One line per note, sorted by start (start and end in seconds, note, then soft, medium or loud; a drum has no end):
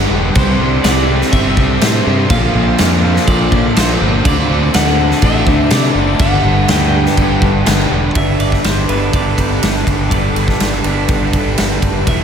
0.00 0.11 G2 medium
0.00 0.36 G2 medium
0.00 0.11 D3 medium
0.00 0.35 D3 medium
0.00 0.12 G3 loud
0.00 0.35 G3 medium
0.00 0.37 B3 medium
0.00 0.32 D4 medium
0.00 0.36 D4 loud
0.00 0.37 D4 medium
0.00 0.38 D4 medium
0.00 0.35 G4 medium
0.00 0.35 B4 medium
0.00 0.35 F#5 medium
0.10 0.30 E1 medium
0.10 0.35 G2 medium
0.10 0.35 D3 medium
0.10 0.35 G3 loud
0.35 0.54 C2 loud
0.35 2.30 C3 medium
0.35 0.59 C3 medium
0.35 2.30 G3 medium
0.35 0.60 G3 loud
0.35 0.61 C4 loud
0.35 2.31 C4 medium
0.35 8.11 D4 medium
0.35 2.32 E4 medium
0.35 6.16 A4 medium
0.35 6.16 C5 medium
0.35 0.86 C5 medium
0.35 2.28 E5 medium
0.35 kick loud
0.35 crash medium
0.59 0.78 C2 medium
0.59 0.84 C3 medium
0.59 0.84 G3 medium
0.59 0.85 C4 medium
0.83 1.22 C2 loud
0.83 1.07 C3 loud
0.83 1.08 G3 loud
0.83 1.09 C4 loud
0.83 1.32 D5 loud
0.83 snare loud
0.83 crash medium
1.08 1.32 C3 medium
1.08 1.32 G3 medium
1.08 1.33 C4 loud
1.21 snare soft
1.32 1.51 G1 medium
1.32 1.56 C3 medium
1.32 1.56 G3 medium
1.32 1.58 C4 loud
1.32 2.26 E5 loud
1.32 kick medium
1.32 crash medium
1.57 1.76 C2 medium
1.57 1.80 C3 medium
1.57 1.80 G3 loud
1.57 1.82 C4 loud
1.57 kick medium
1.81 2.00 A2 medium
1.81 2.05 C3 medium
1.81 2.05 G3 medium
1.81 2.06 C4 medium
1.81 snare loud
1.81 crash medium
2.06 2.25 G2 medium
2.06 2.29 C3 medium
2.06 2.29 G3 loud
2.06 2.31 C4 loud
2.29 2.49 A#1 loud
2.29 4.25 A#2 medium
2.29 2.54 A#2 loud
2.29 4.24 D3 medium
2.29 2.54 F3 loud
2.29 4.25 F3 medium
2.29 2.55 A#3 loud
2.29 4.26 A#3 medium
2.29 4.26 F4 medium
2.29 4.23 F5 medium
2.29 3.27 F5 loud
2.29 kick loud
2.29 crash medium
2.55 2.74 A#1 loud
2.55 2.77 A#2 medium
2.55 2.78 F3 medium
2.55 2.79 A#3 medium
2.78 3.17 F2 medium
2.78 3.02 A#2 loud
2.78 3.03 F3 loud
2.78 3.03 A#3 loud
2.78 snare loud
2.78 crash medium
3.03 3.26 A#2 medium
3.03 3.27 F3 loud
3.03 3.27 A#3 medium
3.16 snare soft
3.27 3.46 A#1 loud
3.27 3.51 A#2 medium
3.27 3.51 F3 medium
3.27 3.52 A#3 loud
3.27 3.78 D5 medium
3.27 kick medium
3.27 crash medium
3.52 3.71 A#1 medium
3.52 3.75 A#2 medium
3.52 3.75 F3 loud
3.52 3.76 A#3 loud
3.52 kick loud
3.76 3.96 A#1 medium
3.76 3.99 A#2 medium
3.76 4.00 F3 medium
3.76 4.00 A#3 medium
3.76 4.10 C5 medium
3.76 snare loud
3.76 crash medium
4.00 4.20 G1 medium
4.00 4.24 A#2 medium
4.00 4.24 F3 medium
4.00 4.24 A#3 loud
4.24 4.44 D2 loud
4.24 4.48 D3 loud
4.24 6.19 D3 medium
4.24 4.49 A3 loud
4.24 6.21 A3 medium
4.24 6.21 C4 loud
4.24 4.50 D4 loud
4.24 6.21 F#4 medium
4.24 4.74 D5 loud
4.24 8.11 A5 medium
4.24 kick loud
4.24 crash medium
4.49 4.68 D2 medium
4.49 4.72 D3 medium
4.49 4.73 A3 medium
4.49 4.74 D4 loud
4.73 5.12 D2 loud
4.73 4.97 D3 loud
4.73 4.97 A3 loud
4.73 4.99 D4 loud
4.73 5.24 F#5 loud
4.73 snare loud
4.73 crash medium
4.98 5.21 D3 medium
4.98 5.22 A3 medium
4.98 5.23 D4 loud
5.11 snare soft
5.22 5.41 A1 medium
5.22 5.45 D3 medium
5.22 5.46 A3 medium
5.22 5.47 D4 loud
5.22 5.71 E5 loud
5.22 kick medium
5.22 crash medium
5.47 5.66 D2 medium
5.47 5.69 D3 medium
5.47 5.70 A3 loud
5.47 5.71 D4 medium
5.47 kick medium
5.70 5.90 C3 medium
5.70 5.94 D3 medium
5.70 5.95 A3 medium
5.70 5.96 D4 loud
5.70 6.20 D5 loud
5.70 snare loud
5.70 crash medium
5.95 6.14 F#1 medium
5.95 6.18 D3 medium
5.95 6.19 A3 loud
5.95 8.64 D4 loud
6.19 6.39 G1 loud
6.19 8.14 G2 medium
6.19 6.43 G2 loud
6.19 6.43 D3 loud
6.19 8.14 D3 medium
6.19 6.44 G3 loud
6.19 8.15 G3 medium
6.19 8.16 B3 medium
6.19 8.17 D4 medium
6.19 8.13 G4 medium
6.19 8.14 B4 medium
6.19 6.69 F#5 loud
6.19 kick loud
6.19 crash medium
6.44 6.63 G1 medium
6.44 6.67 G2 medium
6.44 6.67 D3 medium
6.44 6.68 G3 medium
6.68 7.06 D2 loud
6.68 6.91 G2 loud
6.68 6.92 D3 loud
6.68 6.92 G3 loud
6.68 7.87 G5 loud
6.68 snare loud
6.68 crash medium
6.92 7.15 G2 medium
6.92 7.16 D3 medium
6.92 7.16 G3 medium
7.06 snare soft
7.16 7.36 G1 loud
7.16 7.40 G2 medium
7.16 7.41 D3 medium
7.16 7.41 G3 medium
7.16 kick medium
7.16 crash medium
7.41 7.61 G1 medium
7.41 7.64 G2 loud
7.41 7.65 D3 medium
7.41 7.65 G3 loud
7.41 kick medium
7.66 7.86 G1 medium
7.66 7.89 G2 medium
7.66 7.89 D3 medium
7.66 7.90 G3 medium
7.66 snare loud
7.66 crash medium
7.90 8.10 E1 medium
7.90 8.13 G2 medium
7.90 8.14 D3 medium
7.90 8.14 G3 loud
8.15 8.57 G1 loud
8.15 8.91 G2 medium
8.15 9.12 G2 medium
8.15 8.87 D3 loud
8.15 9.13 D3 medium
8.15 8.89 G3 medium
8.15 9.16 G3 loud
8.15 8.89 B3 medium
8.15 12.04 D4 medium
8.15 8.88 D4 loud
8.15 12.04 A4 medium
8.15 12.24 B4 medium
8.15 8.40 E5 loud
8.15 12.04 G5 medium
8.15 kick loud
8.15 ride loud
8.40 8.65 D5 medium
8.40 ride medium
8.52 kick medium
8.52 snare soft
8.64 8.85 G1 medium
8.64 8.88 C5 loud
8.64 snare loud
8.64 ride medium
8.88 9.10 G1 medium
8.88 10.09 G2 medium
8.88 10.10 D3 medium
8.88 10.12 G3 medium
8.88 10.12 B3 medium
8.88 10.09 D4 medium
8.88 9.14 B4 medium
8.88 ride medium
9.12 9.34 G1 medium
9.12 10.08 G2 medium
9.12 10.10 D3 medium
9.12 10.13 G3 medium
9.12 10.09 D5 medium
9.12 kick loud
9.12 ride medium
9.38 9.58 G1 medium
9.38 kick medium
9.38 ride medium
9.63 9.83 G1 medium
9.63 snare loud
9.63 ride medium
9.87 10.07 G1 medium
9.87 kick medium
9.87 ride medium
10.09 10.32 G1 medium
10.09 11.06 G2 medium
10.09 10.83 G2 medium
10.09 10.83 D3 medium
10.09 11.08 D3 medium
10.09 10.85 G3 medium
10.09 10.84 B3 medium
10.09 11.05 D5 medium
10.09 kick loud
10.09 ride medium
10.13 11.11 G3 loud
10.13 10.82 D4 loud
10.35 10.56 G1 medium
10.35 ride medium
10.48 kick medium
10.48 snare soft
10.60 10.81 G1 medium
10.60 snare loud
10.60 ride medium
10.84 11.05 G1 medium
10.84 12.07 G2 medium
10.84 12.06 D3 medium
10.84 12.07 G3 medium
10.84 12.08 B3 medium
10.84 12.05 D4 medium
10.84 ride medium
11.08 11.30 G1 medium
11.08 12.05 G2 medium
11.08 12.06 D3 medium
11.08 12.09 G3 medium
11.08 kick loud
11.08 ride medium
11.33 11.54 G1 medium
11.33 kick medium
11.33 ride medium
11.58 11.79 G1 medium
11.58 snare loud
11.58 ride medium
11.82 12.03 F#1 medium
11.82 kick medium
11.82 ride medium
12.05 12.24 E1 loud
12.05 12.24 E2 medium
12.05 12.24 B2 loud
12.05 12.24 E3 medium
12.05 12.24 G3 loud
12.05 12.24 B3 loud
12.05 12.24 E4 medium
12.05 12.24 G4 medium
12.05 12.24 E5 loud
12.05 12.24 F#5 medium
12.05 kick loud
12.05 ride loud
12.10 12.24 E3 loud
12.10 12.24 E4 loud